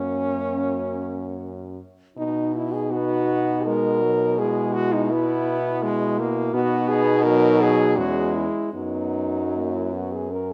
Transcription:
french horn
Already playing: F#2 A#3 C#4 F#4
2.17 B2 D#4
2.56 E4
2.73 G#4
2.91 B3 F#4
3.66 G#3 A#4
4.02 F#3
4.39 G#3 E4 G#4
4.73 F#4
4.93 D#4
5.11 B3 E4
5.83 G#3
6.19 A#3
6.52 B2 B3 D#4 F#4
6.89 G#4
7.23 F#3 A#4
7.62 G#4
7.97 E2 G#3 C#4 F#4
8.34 E4
8.73 F#2 F#3 B3 D#4
9.54 A#3
9.74 E4
9.93 B3 F#4
10.12 G#4
10.30 C#4 A#4

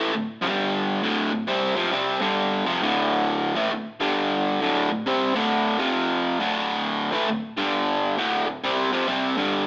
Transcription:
overdriven electric guitar
Already playing: A2 E3 A3
0.14 D2 A2
0.42 G2 D3 G3
1.03 D2 A2 D3
1.32 D2 A2
1.48 C3 G3 C4
1.76 F2 C3 F3
1.93 C3 G3 C4
2.21 G2 D3 G3
2.66 F2 C3 F3
2.82 D2 A2 D3
3.55 A2 E3 A3
3.72 D2 A2
4.00 G2 D3 G3
4.61 D2 A2 D3
4.91 D2 A2
5.06 C3 G3 C4
5.34 D2 A2 D3
5.79 F2 C3 F3
6.39 D2 A2 D3
7.12 A2 E3 A3
7.29 D2 A2
7.57 G2 D3 G3
8.18 D2 A2 D3
8.47 D2 A2
8.64 C3 G3 C4
8.92 F2 C3 F3
9.08 C3 G3 C4
9.37 G2 D3 G3

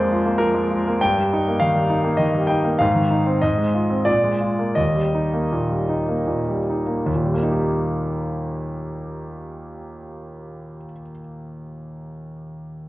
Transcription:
grand piano
Already playing: F2 F3 G#3 A#3 F4 C5 D5
0.12 F4
0.26 A#3
0.38 F3 A#4
0.54 G#3
0.71 F4
0.87 A#3
1.01 G2 G5
1.18 G3
1.33 D#4
1.48 A#3
1.60 D#3 F5
1.75 G3
1.90 D#4
2.04 A#3
2.17 D#3 D#5
2.34 G3
2.47 D#4 G5
2.64 A#3
2.79 G#2 F5
2.95 D#3
3.10 D#4
3.26 C4
3.41 G#2 D#5
3.58 G#3
3.74 F4
3.90 C4
4.05 A#2 D5
4.24 G#3
4.41 F4
4.59 A#3
4.75 D#2 D#5
4.95 G3
5.15 D#4
5.33 A#3
5.52 A#2
5.70 G3
5.89 D#4
6.08 A#3
6.27 A#2
6.49 G3
6.70 D#4
6.87 A#3
7.06 D#2
7.16 A#2
7.24 G3
7.34 A#3
7.43 D#4
7.52 G4

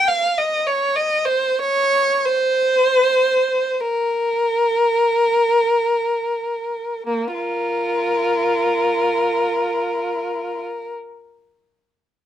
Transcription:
violin
0.08 F5
0.38 D#5
0.67 C#5
0.96 D#5
1.26 C5
1.59 C#5
2.25 C5
3.80 A#4
7.06 A#3
7.34 F4 A#4

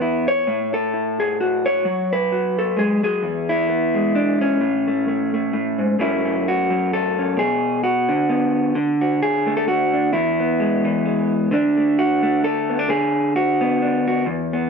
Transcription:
clean electric guitar
Already playing: E2 B3
0.02 E4
0.28 C#5
0.47 A2
0.74 A4
0.94 E4
1.20 G#4
1.41 F#4
1.66 C#5
1.85 F#3
2.13 B4
2.32 F#4
2.59 A4
2.77 G#3 G#4
3.03 F#3 G#4
3.23 E2
3.49 E4
3.69 B3
3.95 G#3
4.15 D4
4.41 C#4
4.61 A2
4.87 A3
5.08 A3
5.34 A3
5.53 A2
5.79 G#2
5.99 F#2 F#3 A3 C#4 E4
6.25 C#4
6.48 F#4
6.70 F#3
6.93 A4
7.19 C#4
7.37 B2 G#4
7.84 F#4
8.09 D3
8.29 B3
8.75 D3
9.01 F#4
9.23 G#4
9.46 A3
9.57 A4
9.68 F#4
9.93 D4
10.12 E2 E4
10.40 B3
10.60 G#3
10.85 E3
11.05 G#3
11.51 D3 A3 D4
11.78 A3
11.99 F#4
12.23 A3
12.44 A4
12.69 B3
12.79 D4
12.89 D3 G#4
13.36 F#4
13.61 B3
13.82 D4
14.08 F#4
14.26 E2
14.53 B3

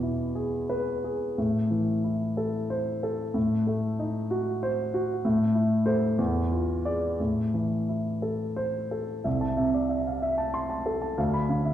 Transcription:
grand piano
Already playing: E2 B2
0.03 E4
0.35 G#4
0.70 B4
1.04 G#4
1.38 A2
1.71 E3
2.04 E4
2.37 A4
2.70 C5
3.03 A4
3.34 A2
3.67 A3
3.99 D#4
4.31 F#4
4.63 C5
4.94 F#4
5.25 A2
5.55 E4
5.86 A4 C5
6.18 E2
6.52 F4
6.85 G#4 D5
7.20 A2
7.54 E3
7.89 E4
8.22 A4
8.56 C5
8.91 A4
9.24 C2 E5
9.41 A5
9.57 C3 E5
9.74 D5
9.89 E5
10.07 F5
10.22 E5
10.38 A5
10.54 C6
10.70 A5
10.86 A4
11.02 A5
11.18 D2 F5
11.34 B5
11.49 D3 F5
11.65 E5

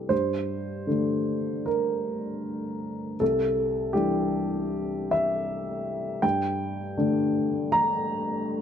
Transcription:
upright piano
0.09 G2 C5
0.87 D3 A3 D4
1.66 A#4
3.20 C2 A4
3.93 E3 G3 D4 G4
5.11 E5
6.22 G2 G5
6.98 D3 A3 D4
7.72 A#5

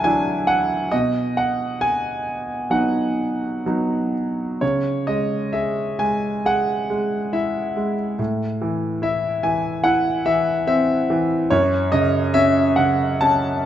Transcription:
grand piano
Already playing: D2 F#3 D4 E4 F#5 G#5 A5
0.04 F#3 D4 E4 G#5
0.47 F#5
0.92 B2 D#5
1.37 F#5
1.81 G#5
2.70 F#3 B3 D#4 F#5
3.66 F#3 B3 D#4
4.61 C#3 C#5
5.07 G#3 D#5
5.53 G#4 E5
5.99 G#3 G#5
6.46 G#4 F#5
6.90 G#3
7.33 E4 E5
7.76 G#3
8.19 A2
8.61 E3
9.02 E4 E5
9.43 E3 G#5
9.84 E4 F#5
10.25 E3 E5
10.67 C4 E5
11.10 E3
11.50 F#2 C#5
11.92 C#3 D#5
12.34 C#4 E5
12.76 C#3 F#5
13.21 C#4 A5

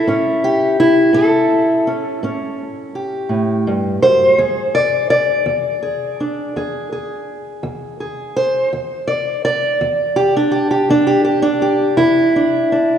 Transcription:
steel-string acoustic guitar
Already playing: E4 A4
0.07 A2 C#4
0.44 G4
0.80 E4
1.13 A2 A4
1.87 C#4
2.23 A2 C#4
2.95 G4
3.29 A2
3.67 G2
4.02 F#2 C5
4.38 E2 G#4
4.75 D5
5.10 D5
5.46 E2
5.83 G#4
6.20 D4
6.56 E2 G#4
6.92 G#4
7.63 E2
8.00 G#4
8.36 C5
8.73 E2
9.08 D5
9.45 D5
9.81 E2
10.16 G4
10.37 D4
10.52 G4
10.71 G4
10.90 E2 D4
11.07 G4
11.25 G4
11.42 D4
11.62 G4
11.97 E2 E4
12.36 D4
12.72 D4

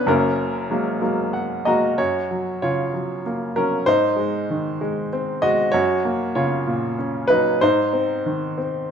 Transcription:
upright piano
0.06 F#1 F#2 A#3 C#4 A#4
0.70 F#3 G#3 A#3
1.02 F#3 G#3 A#3
1.33 F#5
1.65 F#3 G#3 A#3 F#4 D#5 A#5
1.98 F#2 F#4 C#5
2.31 F#3
2.62 C#3 F4 C#5
2.93 F#3
3.26 A#3
3.56 F#3 C#4 A#4
3.86 G#2 D#4 C5
4.16 G#3
4.50 D#3
4.81 G#3
5.13 C4
5.42 G#3 F#4 D#5
5.72 F#2 F#4 C#5
6.05 A#3
6.35 C#3 F4 C#5
6.67 A#2
6.99 C#4
7.28 F#3 D#4 B4
7.61 G#2 D#4 C5
7.93 C4
8.26 D#3
8.58 C4

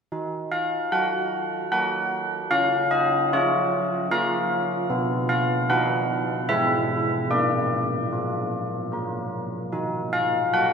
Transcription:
church bells
0.12 D#4
0.52 F5
0.92 F#4 F#5
1.72 F#4 A#4 F#5
2.51 C#4 F5
2.91 D#5
3.33 F4 C#5
4.11 F4 A#4 F5
4.90 B3
5.29 F5
5.70 D#4 B4 F#5
6.49 G#3 E4 B4 E5
7.30 A#3 D5
8.13 F4
8.92 F4 A#4
9.72 D#4
10.13 F5
10.53 F#4 F#5

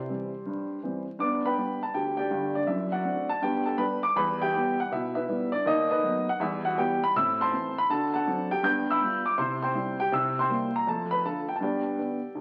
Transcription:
upright piano
Already playing: C3 E4 G4 C5
0.09 E3 G3 C4
0.46 G2
0.83 E3 G3 C4
1.19 G2 B3 D5 D6
1.46 B4 G5 B5
1.57 G3 B3 D4
1.83 A5
1.94 D2 G4 G5
2.17 G4 D5 G5
2.31 G1 G2
2.55 D4 D5
2.67 F#2 E4 E5
2.92 F#4 D5 F#5
3.05 A3 C4 D4
3.29 A5
3.42 G2 B3 G4 G5
3.66 A4 A5
3.77 G3 B3 D4 B4 B5
4.03 D6
4.16 E2 G3 B4 B5
4.42 G4 E5 G5
4.55 G3 B3 E4
4.80 F#5
4.91 B2 E4 E5
5.15 E4 B4 E5
5.28 G3 B3 E4
5.52 D4 D5
5.66 D#2 D#4 D#5
5.91 D#4 B4 D#5
6.03 F#3 A3 B3
6.29 F#5
6.40 E2 G3 E4 E5
6.65 F#4 F#5
6.78 E3 G3 B3 G4 G5
7.04 B5
7.16 A2 C4 E5 E6
7.41 C5 A5 C6
7.52 E3 A3 C4
7.78 B5
7.90 D3 F#4 A4 A5
8.14 A4 F#5 A5
8.27 F#3 C4 D4
8.51 G4 G5
8.63 G2 B3 G5 G6
8.90 E5 B5 E6
9.02 G3 B3 F4
9.26 D6
9.38 C3 E4 C5 C6
9.62 C5 G5 C6
9.75 G3 C4 E4
10.00 G4 G5
10.12 C3 E4 E5 E6
10.39 C5 G5 C6
10.49 G3 A#3 E4
10.76 A#5
10.87 F2 A3 A4 A5
11.11 B4 B5
11.25 D3 A3 F4 A4 A5
11.49 G5
11.56 A5
11.61 G2 B3 G4 D5 G5
11.98 D3 B3 D4
12.35 D2

